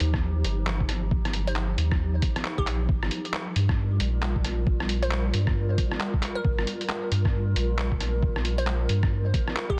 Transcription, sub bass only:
0.01 0.44 D#2 loud
0.45 1.77 G1 medium
1.78 2.21 D#2 loud
2.58 2.88 A#1 loud
2.89 3.10 G1 loud
3.56 3.99 G2 loud
4.01 5.33 A#1 medium
5.34 5.77 G2 loud
6.45 6.66 G1 loud
7.11 7.55 G2 loud
7.56 8.88 A#1 medium
8.89 9.33 G2 loud

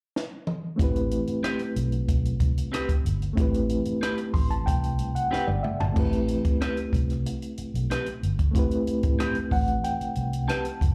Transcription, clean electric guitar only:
1.43 1.60 C4 medium
1.43 1.60 G4 medium
1.43 1.61 B4 medium
2.72 2.89 C4 medium
2.72 2.90 G4 medium
2.72 2.90 B4 medium
4.01 4.18 C4 medium
4.01 4.19 G4 medium
4.01 4.19 B4 medium
5.31 5.48 C4 medium
5.31 5.48 G4 medium
5.31 5.49 B4 medium
6.61 6.77 C4 medium
6.61 6.78 G4 medium
6.61 6.78 B4 medium
7.90 8.07 C4 medium
7.90 8.07 G4 medium
7.90 8.08 B4 medium
9.19 9.36 C4 medium
9.19 9.36 G4 medium
9.19 9.37 B4 medium
10.48 10.65 C4 medium
10.48 10.66 G4 medium
10.48 10.66 B4 medium

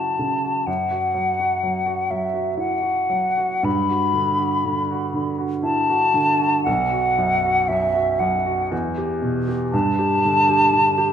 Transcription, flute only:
0.00 0.68 A5 medium
0.67 2.12 F#5 medium
2.11 2.58 E5 medium
2.59 3.66 F#5 medium
3.65 5.37 B5 medium
5.64 6.62 A5 medium
6.64 7.70 F#5 medium
7.68 8.21 E5 medium
8.19 8.71 F#5 medium
9.72 11.13 A5 loud

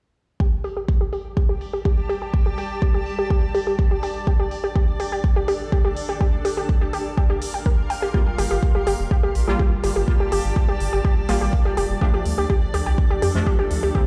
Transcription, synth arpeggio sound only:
0.40 0.52 G4 medium
0.64 0.75 G4 loud
0.77 0.88 G4 medium
1.01 1.11 G4 medium
1.13 1.24 G4 loud
1.37 1.48 G4 loud
1.49 1.60 G4 medium
1.73 1.84 G4 medium
1.85 1.97 G4 medium
2.09 2.21 G4 loud
2.22 2.33 G4 medium
2.46 2.57 G4 loud
2.58 2.70 G4 medium
2.82 2.93 G4 medium
2.94 3.06 G4 medium
3.19 3.29 G4 loud
3.30 3.42 G4 loud
3.55 3.66 G4 loud
3.67 3.78 G4 loud
3.91 4.02 G4 loud
4.03 4.15 G4 loud
4.27 4.38 G4 loud
4.40 4.51 G4 loud
4.64 4.74 G4 medium
4.76 4.87 G4 medium
5.00 5.11 G4 loud
5.12 5.23 G4 loud
5.36 5.47 G4 loud
5.48 5.60 G4 loud
5.72 5.84 G4 loud
5.85 5.96 G4 loud
6.09 6.19 G4 medium
6.21 6.32 G4 medium
6.45 6.56 G4 loud
6.57 6.68 G4 medium
6.81 6.92 G4 medium
6.93 7.05 G4 loud
7.17 7.29 G4 medium
7.30 7.41 G4 loud
7.54 7.65 G5 medium
7.66 7.74 A#4 medium
7.90 7.98 G5 medium
8.02 8.07 G4 loud
8.14 8.26 G4 loud
8.38 8.50 G4 loud
8.51 8.62 G4 loud
8.75 8.86 G4 loud
8.87 8.99 G4 loud
9.11 9.22 G4 loud
9.23 9.35 G4 loud
9.48 9.58 G4 loud
9.59 9.71 G4 loud
9.84 9.95 G4 loud
9.96 10.07 G4 medium
10.20 10.31 G4 loud
10.32 10.44 G4 loud
10.56 10.67 G4 loud
10.69 10.80 G4 medium
10.93 11.03 G4 loud
11.05 11.16 G4 loud
11.29 11.40 G4 loud
11.41 11.52 G4 loud
11.65 11.76 G4 loud
11.77 11.89 G4 loud
12.01 12.13 G4 loud
12.14 12.25 G4 loud
12.38 12.49 G4 medium
12.50 12.62 G4 loud
12.74 12.85 G4 loud
12.86 12.98 G4 loud
13.11 13.21 G4 loud
13.22 13.34 G4 loud
13.47 13.58 G4 loud
13.59 13.70 G4 loud
13.83 13.94 G4 loud
13.95 14.07 G4 loud

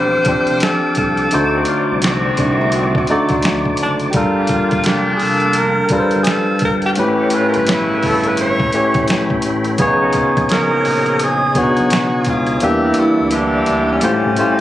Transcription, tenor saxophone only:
0.00 0.65 C5 loud
0.64 0.98 A4 loud
0.98 1.64 A4 medium
3.83 3.95 D4 medium
4.10 4.18 G4 medium
4.17 4.89 F4 medium
4.87 5.15 G4 medium
5.16 5.24 G#4 medium
5.22 5.59 A4 loud
5.57 5.92 A#4 loud
5.93 6.20 A#4 medium
6.23 6.31 G#4 medium
6.29 6.63 A4 medium
6.65 6.74 A#4 medium
6.86 6.89 G4 medium
6.94 7.02 F#4 medium
7.00 7.37 G4 medium
7.35 7.47 B4 medium
7.49 7.58 A#4 medium
7.57 8.04 B4 loud
8.06 8.29 A4 medium
8.27 8.39 B4 loud
8.41 9.06 C#5 loud
10.52 11.25 A#4 loud
11.24 11.60 G#4 loud
11.58 12.31 F#4 loud
12.29 12.66 F4 medium
12.64 13.01 G4 medium
13.00 13.36 E4 medium
13.35 13.91 D4 medium
13.92 14.61 C#4 medium

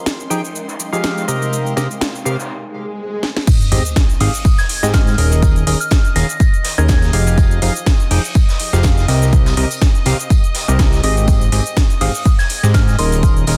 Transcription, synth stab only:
0.30 0.41 F3 medium
0.30 0.41 D#4 medium
0.30 0.41 G4 medium
0.30 0.41 G#4 medium
0.30 0.41 G5 loud
0.93 1.25 F3 medium
0.93 1.25 D#4 medium
0.93 1.25 G4 medium
0.93 1.25 G#4 medium
0.93 1.25 F5 loud
1.28 1.74 C3 medium
1.28 1.74 C4 medium
1.28 1.74 G4 medium
1.28 1.74 A#4 medium
1.28 1.74 D#5 medium
1.77 1.88 C3 medium
1.77 1.88 C4 medium
1.77 1.88 G4 medium
1.77 1.88 A#4 medium
1.77 1.88 D#5 medium
2.25 2.36 C3 medium
2.25 2.36 C4 medium
2.25 2.36 G4 medium
2.25 2.36 A#4 medium
2.25 2.36 F5 loud
3.72 3.83 G#2 medium
3.72 3.83 C4 medium
3.72 3.83 G4 medium
3.72 3.83 G#4 medium
3.72 3.83 D#5 loud
4.21 4.31 G#2 loud
4.21 4.31 C4 medium
4.21 4.31 G4 medium
4.21 4.31 G#4 medium
4.21 4.31 F5 loud
4.83 5.16 G#2 loud
4.83 5.16 C4 medium
4.83 5.15 G4 medium
4.83 5.16 G#4 medium
4.83 5.15 D#5 loud
5.18 5.64 D#3 medium
5.18 5.64 C#4 medium
5.18 5.64 G#4 medium
5.18 5.64 A#4 medium
5.18 5.64 D#5 medium
5.67 5.78 D#3 medium
5.67 5.78 C#4 medium
5.67 5.78 G#4 medium
5.67 5.78 A#4 medium
5.67 5.78 D#5 loud
6.16 6.27 D#3 loud
6.16 6.27 C#4 medium
6.16 6.27 G#4 medium
6.16 6.27 A#4 medium
6.16 6.27 F5 loud
6.78 7.11 D#3 medium
6.78 7.11 C#4 medium
6.78 7.11 G#4 medium
6.78 7.11 A#4 medium
6.78 7.11 D#5 loud
7.13 7.59 F3 medium
7.13 7.59 D#4 medium
7.13 7.59 G4 medium
7.13 7.59 G#4 medium
7.13 7.59 F5 loud
7.62 7.73 F3 medium
7.62 7.73 D#4 medium
7.62 7.73 G4 medium
7.62 7.73 G#4 medium
7.62 7.73 F5 loud
8.11 8.22 F3 loud
8.11 8.22 D#4 medium
8.11 8.22 G4 medium
8.11 8.22 G#4 medium
8.11 8.22 G5 loud
8.73 9.06 F3 medium
8.73 9.06 D#4 medium
8.73 9.06 G4 medium
8.73 9.06 G#4 medium
8.73 9.06 F5 loud
9.08 9.55 C3 medium
9.08 9.55 C4 medium
9.08 9.55 G4 medium
9.08 9.55 A#4 medium
9.08 9.55 D#5 medium
9.57 9.68 C3 medium
9.57 9.68 C4 medium
9.57 9.68 G4 medium
9.57 9.68 A#4 medium
9.57 9.68 D#5 loud
10.06 10.17 C3 loud
10.06 10.17 C4 medium
10.06 10.17 G4 medium
10.06 10.17 A#4 medium
10.06 10.17 F5 loud
10.68 11.01 C3 medium
10.68 11.01 C4 medium
10.68 11.01 G4 medium
10.68 11.01 A#4 medium
10.68 11.01 D#5 loud
11.03 11.50 G#2 medium
11.03 11.50 C4 medium
11.03 11.50 G4 medium
11.03 11.50 G#4 medium
11.03 11.50 D#5 loud
11.52 11.63 G#2 medium
11.52 11.63 C4 medium
11.52 11.63 G4 medium
11.52 11.63 G#4 medium
11.52 11.63 D#5 loud
12.01 12.12 G#2 medium
12.01 12.12 C4 medium
12.01 12.12 G4 medium
12.01 12.12 G#4 medium
12.01 12.12 F5 loud
12.63 12.96 G#2 loud
12.63 12.96 C4 medium
12.63 12.96 G4 medium
12.63 12.96 G#4 medium
12.63 12.96 D#5 loud
12.99 13.45 D#3 medium
12.99 13.45 C#4 medium
12.99 13.45 G#4 medium
12.99 13.45 A#4 medium
12.99 13.45 D#5 loud
13.47 13.57 D#3 medium
13.47 13.57 C#4 medium
13.47 13.57 G#4 medium
13.47 13.57 A#4 medium
13.47 13.57 D#5 loud

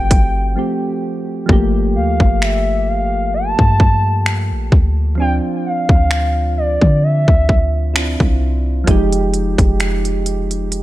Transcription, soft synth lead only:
0.00 1.03 G5 loud
1.95 2.43 F5 medium
2.42 2.90 E5 medium
2.88 3.34 F5 medium
3.34 4.68 A5 loud
5.19 5.33 G5 loud
5.65 6.53 F5 loud
6.57 7.04 D5 medium
7.03 7.95 E5 medium

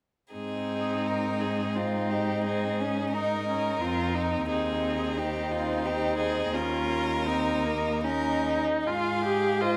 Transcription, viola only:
0.34 1.78 C4 soft
1.76 3.13 D#4 soft
3.14 3.47 D#4 soft
3.48 3.81 C#4 soft
3.82 4.47 C4 soft
4.49 5.20 C4 soft
5.18 6.56 D#4 soft
6.55 7.27 C#4 soft
7.26 7.67 C4 soft
7.66 8.04 A#3 soft
8.05 8.88 D#4 soft
8.87 9.24 F4 soft
9.24 9.62 G4 soft
9.61 9.77 F4 soft

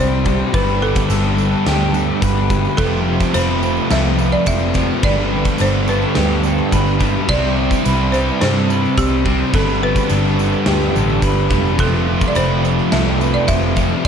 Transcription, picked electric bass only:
0.00 0.41 C2 medium
0.54 0.98 G1 loud
1.10 1.54 G1 loud
1.67 2.10 D2 loud
2.22 2.66 G1 medium
2.78 3.22 F1 loud
3.35 3.78 F1 loud
3.91 4.35 C2 loud
4.47 4.91 F1 medium
5.03 5.47 G1 loud
5.60 6.04 G1 loud
6.17 6.60 D2 loud
6.73 7.16 G1 medium
7.29 7.72 C2 loud
7.86 8.29 C2 loud
8.42 8.85 G2 loud
8.98 9.41 C2 loud
9.54 9.97 G1 loud
10.11 10.54 G1 loud
10.67 10.89 D2 loud
10.95 11.20 A1 medium
11.23 11.48 G1 medium
11.51 11.76 F1 medium
11.79 12.23 F1 loud
12.36 12.79 F1 loud
12.93 13.36 C2 medium
13.49 13.92 F1 loud

